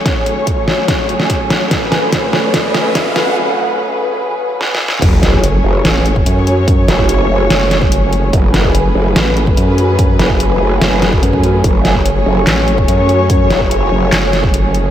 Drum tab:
CC |------------------------------------------------|------------------------------------------------|------------------------------------------------|x-----------------------------------------------|
HH |x-----x-----x-----------x-----x-----x-----x-----|x-----x-----x-----------x-----x-----x-----x-----|------------------------------------------------|x-----x-----x-----------x-----x-----x-----x-----|
CP |------------------------------------------------|------------------------------------------------|------------------------------------------------|------------------------------------------------|
SD |o-----------------o-----o--------o--------o-----|o-----o-----o-----o-----o-----o-----o-----o-----|------------------------------------o---o---o---|------o-----------------o-----------------------|
BD |o-----------o-----------o-----------o-----------|o-----------o-----------o-----------o-----------|------------------------------------------------|o--------o-----------------------o--------------|

CC |------------------------------------------------|------------------------------------------------|------------------------------------------------|------------------------------------------------|
HH |x-----x-----x-----------x-----x-----x-----x-----|x-----x-----x-----------x-----x-----x-----x-----|x-----x-----x-----------x-----x-----x-----x-----|x-----x-----x-----------x-----x-----x-----x-----|
CP |------------------------------------------------|------------------------------------------------|------------------------------------------------|------------------------x-----------------------|
SD |------o-----------------o-----o-----------------|------o-----------------o-----------------------|------o-----------------o-----o-----------------|------o-----------------o-----------------------|
BD |o--------o-----------------------o--------------|o--------o-----------------------o--------------|o--------o-----------------------o-----o--------|o--------o-----------------------o--------------|

CC |------------------------------------------------|
HH |x-----x-----x-----------x-----x-----x-----x-----|
CP |------------------------x-----------------------|
SD |------o-----------------o-----o-----------------|
BD |o--------o-----------------------o--------------|